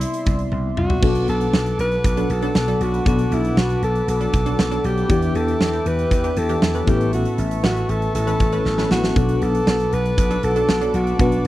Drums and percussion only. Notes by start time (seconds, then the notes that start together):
0.01 closed hi-hat
0.14 closed hi-hat
0.26 kick, closed hi-hat
0.39 closed hi-hat
0.52 high tom
0.77 mid tom
0.90 floor tom
1.03 kick, crash
1.15 closed hi-hat
1.28 closed hi-hat
1.41 closed hi-hat
1.53 snare
1.66 closed hi-hat
1.79 closed hi-hat
1.92 closed hi-hat
2.04 kick, closed hi-hat
2.17 closed hi-hat
2.30 closed hi-hat
2.42 closed hi-hat
2.55 snare
2.68 closed hi-hat
2.81 closed hi-hat
2.94 closed hi-hat
3.06 kick, closed hi-hat
3.19 closed hi-hat
3.32 closed hi-hat
3.45 closed hi-hat
3.57 snare
3.70 closed hi-hat
3.83 closed hi-hat
3.95 closed hi-hat
4.08 closed hi-hat
4.21 closed hi-hat
4.33 kick, closed hi-hat
4.46 closed hi-hat
4.59 snare
4.72 closed hi-hat
4.84 closed hi-hat
4.98 closed hi-hat
5.10 kick, closed hi-hat
5.22 closed hi-hat
5.35 closed hi-hat
5.48 closed hi-hat
5.61 snare
5.73 closed hi-hat
5.86 closed hi-hat
5.99 closed hi-hat
6.11 kick, closed hi-hat
6.24 closed hi-hat
6.37 closed hi-hat
6.49 closed hi-hat
6.62 snare
6.75 closed hi-hat
6.87 kick, closed hi-hat
7.01 closed hi-hat
7.13 closed hi-hat
7.25 closed hi-hat
7.38 closed hi-hat
7.51 closed hi-hat
7.64 snare
7.76 closed hi-hat
7.89 closed hi-hat
8.02 closed hi-hat
8.15 closed hi-hat
8.27 closed hi-hat
8.40 kick, closed hi-hat
8.52 closed hi-hat
8.65 snare
8.78 snare
8.91 snare
9.03 snare
9.16 kick, closed hi-hat
9.29 closed hi-hat
9.42 closed hi-hat
9.55 closed hi-hat
9.67 snare
9.80 closed hi-hat
9.93 closed hi-hat
10.05 closed hi-hat
10.18 kick, closed hi-hat
10.31 closed hi-hat
10.43 closed hi-hat
10.56 closed hi-hat
10.69 snare
10.81 closed hi-hat
10.94 closed hi-hat
11.07 closed hi-hat
11.19 kick, closed hi-hat
11.32 closed hi-hat